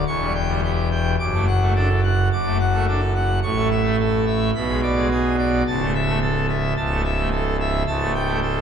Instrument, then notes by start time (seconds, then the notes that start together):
pipe organ
0.07 E1 E2 C#6
0.21 G3
0.35 G5
0.49 G3
0.63 G4
0.91 G5
1.19 F#1 F#2 D6
1.34 A3
1.47 F#5
1.61 A3
1.76 D4 A4
2.03 F#5
2.32 F#1 F#2 D6
2.46 A3
2.60 F#5
2.74 A3
2.88 D4 A4
3.15 F#5
3.43 A1 A2 C#6
3.57 A3
3.71 E5
3.85 A3
4.00 A4
4.26 E5
4.55 B1 B2 B5
4.69 G#3
4.83 D5
4.97 G#3
5.11 G#4
5.39 D5
5.67 C#1 C#2 A5
5.81 A3
5.94 E5
6.08 A3
6.22 A4
6.49 E5
6.77 C#1 C#2 A5
6.90 A3
7.04 E5
7.18 A3
7.32 A4
7.60 E5
7.87 C#1 C#2 A5
8.01 A3
8.14 G5
8.28 A3
8.42 A4